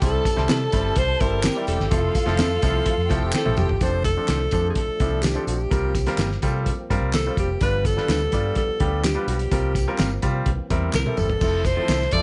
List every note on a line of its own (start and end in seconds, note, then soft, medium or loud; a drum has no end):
0.00 0.19 C2 loud
0.00 1.88 G3 medium
0.00 0.21 G3 medium
0.00 1.89 C4 medium
0.00 0.21 C4 medium
0.00 1.89 E4 medium
0.00 0.21 E4 medium
0.00 1.41 A4 medium
0.00 0.22 C5 medium
0.00 1.41 A5 loud
0.00 kick loud
0.00 closed hi-hat medium
0.00 tambourine medium
0.04 0.47 A4 loud
0.25 kick loud
0.25 closed hi-hat medium
0.25 tambourine medium
0.36 0.46 C2 loud
0.36 0.56 G3 medium
0.36 0.57 C4 medium
0.36 0.57 E4 medium
0.36 0.57 C5 medium
0.36 snare soft
0.49 0.66 C3 loud
0.49 0.59 C4 medium
0.49 0.59 E4 medium
0.49 0.59 G4 medium
0.49 0.99 A4 loud
0.49 0.59 C5 loud
0.49 snare loud
0.49 clap medium
0.49 closed hi-hat medium
0.49 tambourine medium
0.72 0.91 G1 medium
0.72 0.99 G3 medium
0.72 0.99 C4 medium
0.72 0.99 E4 medium
0.72 0.99 C5 medium
0.72 kick medium
0.72 closed hi-hat medium
0.72 tambourine medium
0.96 1.14 C2 medium
0.96 1.22 C5 loud
0.96 kick medium
0.96 closed hi-hat medium
0.96 tambourine soft
1.20 1.47 G1 medium
1.20 1.40 G3 medium
1.20 1.40 C4 medium
1.20 1.40 E4 medium
1.20 1.68 A#4 loud
1.20 1.40 C5 medium
1.20 kick loud
1.20 closed hi-hat medium
1.20 tambourine soft
1.43 1.54 C4 medium
1.43 1.54 E4 medium
1.43 1.91 G4 medium
1.43 1.54 G4 loud
1.43 1.55 C5 loud
1.43 1.91 G5 medium
1.43 snare loud
1.43 clap loud
1.43 closed hi-hat medium
1.43 tambourine loud
1.56 1.76 G3 medium
1.56 1.76 C4 medium
1.56 1.76 E4 medium
1.56 1.76 D5 medium
1.67 1.77 E1 medium
1.67 3.30 A4 loud
1.67 closed hi-hat medium
1.67 tambourine medium
1.80 1.89 G1 medium
1.80 snare soft
1.91 2.09 F1 loud
1.91 2.11 F3 medium
1.91 3.79 F3 medium
1.91 3.79 A3 medium
1.91 2.11 C4 medium
1.91 2.11 E4 medium
1.91 3.79 F4 medium
1.91 3.08 F4 medium
1.91 2.11 A4 medium
1.91 3.08 F5 loud
1.91 kick loud
1.91 closed hi-hat medium
1.91 tambourine medium
2.15 kick medium
2.15 closed hi-hat medium
2.15 tambourine medium
2.26 2.41 F1 loud
2.26 2.46 F3 loud
2.26 2.46 C4 medium
2.26 2.46 E4 medium
2.26 2.46 A4 loud
2.26 snare soft
2.38 2.57 F2 loud
2.38 2.49 C4 medium
2.38 2.49 E4 medium
2.38 2.49 A4 loud
2.38 2.49 C5 medium
2.38 snare loud
2.38 clap medium
2.38 closed hi-hat medium
2.38 tambourine medium
2.62 2.81 C2 medium
2.62 2.89 F3 medium
2.62 2.89 C4 medium
2.62 2.89 E4 medium
2.62 2.89 A4 medium
2.62 kick medium
2.62 closed hi-hat medium
2.62 tambourine medium
2.86 kick medium
2.86 closed hi-hat medium
2.98 3.07 F2 medium
3.09 3.19 C2 medium
3.09 3.29 F3 medium
3.09 3.30 C4 medium
3.09 3.30 E4 medium
3.09 3.80 G4 medium
3.09 3.30 A4 loud
3.09 3.80 G5 medium
3.09 kick medium
3.09 closed hi-hat medium
3.09 tambourine soft
3.22 3.31 F1 medium
3.32 3.44 C4 medium
3.32 3.44 E4 medium
3.32 3.44 A4 medium
3.32 3.57 A4 loud
3.32 3.44 C5 medium
3.32 snare medium
3.32 clap loud
3.32 tambourine loud
3.45 3.55 A1 medium
3.45 3.65 F3 medium
3.45 3.65 C4 medium
3.45 3.65 E4 medium
3.45 3.66 A4 medium
3.45 high tom medium
3.57 3.66 F1 medium
3.57 3.84 G4 medium
3.57 mid tom loud
3.57 tambourine soft
3.69 3.78 G1 medium
3.69 floor tom medium
3.81 4.16 F1 loud
3.81 4.01 F3 medium
3.81 7.59 F3 medium
3.81 5.70 A3 medium
3.81 4.01 C4 medium
3.81 4.01 D4 medium
3.81 5.70 D4 medium
3.81 4.01 A4 medium
3.81 4.04 C5 loud
3.81 kick loud
3.81 closed hi-hat medium
3.81 tambourine medium
4.04 4.65 A4 loud
4.04 kick loud
4.04 closed hi-hat medium
4.04 tambourine medium
4.17 4.37 F3 medium
4.17 4.37 C4 medium
4.17 4.37 D4 medium
4.17 4.37 A4 medium
4.28 4.46 C2 medium
4.28 4.39 A3 medium
4.28 4.39 D4 medium
4.28 4.39 F4 medium
4.28 4.39 C5 medium
4.28 snare medium
4.28 clap medium
4.28 closed hi-hat medium
4.28 tambourine medium
4.51 4.70 F2 loud
4.51 4.79 F3 medium
4.51 4.79 C4 medium
4.51 4.79 D4 medium
4.51 4.79 A4 medium
4.51 kick medium
4.51 closed hi-hat medium
4.51 tambourine medium
4.70 4.77 G#4 medium
4.75 5.24 A4 loud
4.75 kick medium
4.75 closed hi-hat medium
4.88 muted fingered electric bass stroke soft
5.00 5.36 C2 medium
5.00 5.20 F3 medium
5.00 5.20 C4 medium
5.00 5.20 D4 medium
5.00 5.20 E4 medium
5.00 kick medium
5.00 closed hi-hat medium
5.00 tambourine soft
5.23 5.34 A3 medium
5.23 5.34 D4 medium
5.23 5.34 F4 medium
5.23 5.47 G4 medium
5.23 5.34 C5 medium
5.23 snare loud
5.23 clap medium
5.23 closed hi-hat medium
5.23 tambourine loud
5.35 5.55 F3 medium
5.35 5.55 C4 medium
5.35 5.55 D4 medium
5.35 5.56 A4 medium
5.47 5.65 A#1 medium
5.47 6.39 G4 medium
5.47 closed hi-hat medium
5.47 tambourine medium
5.70 6.07 C2 medium
5.70 5.91 G3 medium
5.70 7.60 A#3 medium
5.70 7.59 C4 medium
5.70 5.91 C4 medium
5.70 5.91 F4 medium
5.70 5.91 A#4 medium
5.70 kick loud
5.70 closed hi-hat medium
5.70 tambourine medium
5.95 kick loud
5.95 closed hi-hat medium
5.95 tambourine medium
6.06 6.27 G3 medium
6.06 6.27 C4 medium
6.06 6.27 F4 medium
6.06 6.27 A#4 medium
6.06 snare soft
6.06 closed hi-hat medium
6.18 6.36 G1 medium
6.18 6.29 A#3 medium
6.18 6.29 F4 medium
6.18 6.29 G4 medium
6.18 6.30 C5 medium
6.18 snare loud
6.18 clap medium
6.18 closed hi-hat medium
6.18 tambourine medium
6.31 snare soft
6.42 6.69 C3 loud
6.42 6.69 G3 medium
6.42 6.69 C4 medium
6.42 6.69 F4 medium
6.42 6.69 A4 medium
6.42 kick medium
6.42 closed hi-hat medium
6.42 tambourine medium
6.66 kick medium
6.66 closed hi-hat medium
6.66 tambourine soft
6.90 6.99 G2 medium
6.90 7.10 G3 medium
6.90 7.10 C4 medium
6.90 7.10 F4 medium
6.90 7.10 A#4 medium
6.90 kick medium
6.90 closed hi-hat medium
6.90 tambourine soft
7.01 7.28 C2 medium
7.13 7.24 A#3 medium
7.13 7.24 F4 medium
7.13 7.25 G4 medium
7.13 7.37 A4 medium
7.13 7.25 C5 medium
7.13 snare medium
7.13 clap loud
7.13 closed hi-hat medium
7.13 tambourine loud
7.26 7.46 G3 medium
7.26 7.46 C4 medium
7.26 7.46 F4 medium
7.26 7.46 C5 medium
7.37 7.55 F1 medium
7.37 7.61 G4 medium
7.37 kick medium
7.37 closed hi-hat medium
7.37 tambourine medium
7.61 7.97 G1 loud
7.61 10.44 F3 medium
7.61 7.81 G3 medium
7.61 9.50 G3 medium
7.61 9.50 B3 medium
7.61 7.81 D4 medium
7.61 7.82 F4 medium
7.61 7.82 B4 medium
7.61 7.88 B4 loud
7.61 kick loud
7.61 closed hi-hat medium
7.61 tambourine medium
7.85 8.57 A4 loud
7.85 kick medium
7.85 closed hi-hat medium
7.85 tambourine medium
7.97 8.17 G3 medium
7.97 8.17 D4 medium
7.97 8.17 F4 medium
7.97 8.17 B4 medium
7.97 snare soft
8.08 8.26 D2 medium
8.08 8.19 G3 medium
8.08 8.19 D4 medium
8.08 8.19 F4 medium
8.08 8.20 B4 loud
8.08 snare loud
8.08 clap medium
8.08 closed hi-hat medium
8.08 tambourine medium
8.32 8.50 G2 loud
8.32 8.59 G3 medium
8.32 8.59 D4 medium
8.32 8.60 F4 medium
8.32 8.60 D5 medium
8.32 kick medium
8.32 closed hi-hat medium
8.32 tambourine medium
8.55 9.01 A4 loud
8.55 kick medium
8.55 closed hi-hat medium
8.55 tambourine soft
8.69 muted fingered electric bass stroke soft
8.80 9.16 D2 medium
8.80 9.00 G3 medium
8.80 9.00 D4 medium
8.80 9.00 F4 medium
8.80 9.00 G4 medium
8.80 kick medium
8.80 closed hi-hat medium
9.03 9.14 G3 medium
9.03 9.14 D4 medium
9.03 9.14 F4 medium
9.03 9.26 G4 medium
9.03 9.15 B4 medium
9.03 snare medium
9.03 clap loud
9.03 closed hi-hat medium
9.03 tambourine loud
9.15 9.35 G3 medium
9.15 9.35 D4 medium
9.15 9.36 F4 medium
9.15 9.35 B4 medium
9.27 9.45 B1 medium
9.27 10.19 G4 medium
9.27 closed hi-hat medium
9.27 tambourine medium
9.39 closed hi-hat soft
9.51 9.87 C2 loud
9.51 9.71 G3 medium
9.51 10.44 A#3 medium
9.51 11.40 C4 medium
9.51 9.71 C4 medium
9.51 9.72 F4 medium
9.51 9.72 A#4 medium
9.51 kick loud
9.51 closed hi-hat medium
9.51 tambourine medium
9.75 kick loud
9.75 closed hi-hat medium
9.75 tambourine medium
9.88 10.07 G3 medium
9.88 10.07 C4 medium
9.88 10.07 F4 medium
9.88 10.07 A#4 medium
9.98 10.17 G1 medium
9.98 10.09 G3 medium
9.98 10.09 C4 medium
9.98 10.09 F4 medium
9.98 10.09 A#4 medium
9.98 snare loud
9.98 clap medium
9.98 closed hi-hat medium
9.98 tambourine medium
10.22 10.40 C3 loud
10.22 10.46 G3 medium
10.22 10.47 C4 medium
10.22 10.47 F4 medium
10.22 10.47 G4 medium
10.22 kick medium
10.22 closed hi-hat medium
10.22 tambourine medium
10.44 10.55 C2 medium
10.44 11.39 E3 medium
10.44 11.40 A#3 medium
10.44 kick medium
10.44 closed hi-hat medium
10.59 muted fingered electric bass stroke soft
10.70 10.88 E2 medium
10.70 10.90 G3 medium
10.70 10.90 C4 medium
10.70 10.90 E4 medium
10.70 10.90 A#4 medium
10.70 kick medium
10.70 closed hi-hat medium
10.70 tambourine soft
10.93 11.03 C2 medium
10.93 11.03 G3 medium
10.93 11.04 C4 medium
10.93 11.04 E4 medium
10.93 11.04 A#4 medium
10.93 11.20 A#4 loud
10.93 snare medium
10.93 clap loud
10.93 tambourine loud
11.06 11.26 G3 medium
11.06 11.26 C4 medium
11.06 11.26 E4 medium
11.06 11.26 A4 medium
11.06 high tom medium
11.17 11.35 G1 medium
11.17 11.67 A4 loud
11.17 mid tom medium
11.17 tambourine medium
11.29 floor tom medium
11.39 11.77 F1 loud
11.39 12.22 F3 medium
11.39 11.61 F3 medium
11.39 12.22 A3 medium
11.39 11.61 C4 medium
11.39 12.22 E4 medium
11.39 11.61 E4 medium
11.39 11.61 A4 medium
11.39 kick loud
11.39 crash medium
11.39 tambourine medium
11.65 12.15 C5 loud
11.65 kick medium
11.65 closed hi-hat medium
11.65 tambourine medium
11.77 11.96 F3 medium
11.77 11.96 C4 medium
11.77 11.97 E4 medium
11.77 11.97 A4 medium
11.88 12.06 C2 medium
11.88 11.98 A3 medium
11.88 11.99 C4 medium
11.88 11.99 E4 medium
11.88 11.99 A4 loud
11.88 snare loud
11.88 clap medium
11.88 closed hi-hat medium
11.88 tambourine medium
12.01 snare soft
12.11 12.22 F2 medium
12.11 12.22 F3 medium
12.11 12.22 C4 medium
12.11 12.22 E4 medium
12.11 12.22 A4 medium
12.11 12.22 D5 loud
12.11 kick medium
12.11 closed hi-hat medium
12.11 tambourine medium